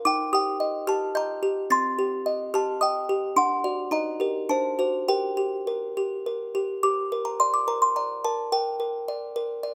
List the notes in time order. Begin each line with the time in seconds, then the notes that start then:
0.05 D#4 G5 D6
0.33 G4 G5 D#6
0.60 D#5
0.87 G4 A5 F6
1.15 D#5 A#5 G6
1.43 G4
1.70 C4 C6 A6
1.99 G4
2.26 D#5
2.54 G4 A5 F6
2.81 D#5 G5 D#6
3.09 G4
3.36 D4 F#5 C6
3.64 F#4 D5
3.91 D#4 D#5 A#5
4.20 G4 A#4
4.49 D4 C5 A5
4.79 F#4 C5
5.08 G4 A#4 G5
5.37 G4
5.67 A#4
5.97 G4
6.26 A#4
6.55 G4
6.83 G4 D6
7.12 A#4
7.25 A#5
7.40 D5 C6
7.54 D6
7.68 A#4 A#5
7.82 C6
7.96 D5 A#5
8.24 A#4 A5
8.52 A#4 G5
8.80 A#4
9.08 D5
9.36 A#4
9.63 D5